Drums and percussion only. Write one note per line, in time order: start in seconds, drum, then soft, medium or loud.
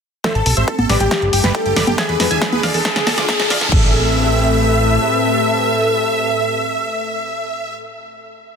0.24 kick loud
0.24 snare soft
0.24 closed hi-hat medium
0.35 closed hi-hat soft
0.46 open hi-hat loud
0.57 closed hi-hat medium
0.68 kick loud
0.68 closed hi-hat medium
0.79 closed hi-hat soft
0.79 high conga medium
0.89 snare medium
0.89 open hi-hat loud
1.00 closed hi-hat medium
1.11 kick loud
1.11 snare medium
1.11 closed hi-hat medium
1.22 closed hi-hat soft
1.33 open hi-hat loud
1.44 snare medium
1.44 closed hi-hat medium
1.55 kick loud
1.55 closed hi-hat medium
1.66 closed hi-hat soft
1.76 snare medium
1.76 open hi-hat loud
1.87 closed hi-hat medium
1.87 high conga medium
1.98 kick loud
1.98 snare medium
1.98 closed hi-hat medium
2.09 closed hi-hat soft
2.20 snare medium
2.20 open hi-hat loud
2.31 closed hi-hat medium
2.42 kick loud
2.42 snare medium
2.42 closed hi-hat medium
2.53 closed hi-hat soft
2.53 high conga medium
2.63 snare medium
2.63 open hi-hat loud
2.74 open hi-hat medium
2.85 kick loud
2.85 snare medium
2.96 snare medium
2.96 closed hi-hat soft
3.07 snare medium
3.07 open hi-hat loud
3.07 high conga medium
3.18 snare medium
3.18 closed hi-hat medium
3.29 kick loud
3.29 snare loud
3.29 closed hi-hat medium
3.29 high conga medium
3.40 snare medium
3.40 closed hi-hat soft
3.50 snare loud
3.50 open hi-hat loud
3.61 snare loud
3.72 kick loud
3.72 crash medium